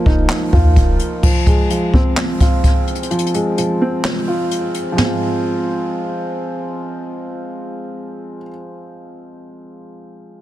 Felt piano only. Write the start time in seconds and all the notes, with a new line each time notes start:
Already playing: F3 A#3 D#4 F4
0.06 D#4
0.30 F3
0.53 F4
1.23 F3
1.47 G#3
1.70 F3
1.94 C4
2.18 F3
2.40 F4
3.11 F3
3.34 G#3
3.58 F3
3.82 C4
4.04 F3
4.28 F4
4.92 F3 G#3
5.00 C4
5.04 F4